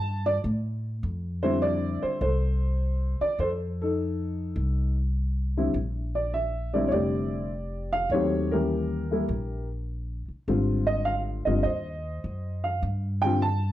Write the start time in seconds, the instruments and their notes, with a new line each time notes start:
Already playing: upright bass G2, upright piano A5
0.26 upright piano D5
0.44 upright bass A2
1.03 upright bass F2
1.43 upright piano D3 G3 C4 E4 C5
1.62 upright piano D5
2.02 upright piano C5, muted upright bass stroke
2.21 upright bass C2, upright piano A4 C5
3.20 upright piano D5, muted upright bass stroke
3.39 upright bass F2, upright piano A4 C5
3.82 upright piano D#4 A4
4.56 upright bass C2
5.57 upright piano D3 G3 C4 E4
5.74 upright bass A#1
6.15 upright piano D5
6.34 upright piano E5
6.74 upright piano D3 G3 C4 E4 D5
6.88 upright bass F1, upright piano C#5 D5
6.94 upright piano G4
7.93 upright piano F5
8.10 upright bass D#2, upright piano D#3 F#3 A3 C4 C#5
8.14 upright piano G4
8.51 upright piano E3 G3 A#3 C#4 G4 A#4
9.11 upright piano E3 G3 A#3 E4
9.29 upright bass A#1
10.28 muted upright bass stroke
10.48 upright bass G#1, upright piano D3 G3 C4 F4
10.87 upright piano D#5
11.05 upright piano F5
11.45 upright bass G1, upright piano D3 G3 C4 F4 D#5
11.63 upright bass D#2, upright piano C5 D#5
12.24 upright bass F#2
12.64 upright piano F5
12.82 upright bass G2
13.22 upright piano D3 G3 C4 F4 G5
13.42 upright piano A5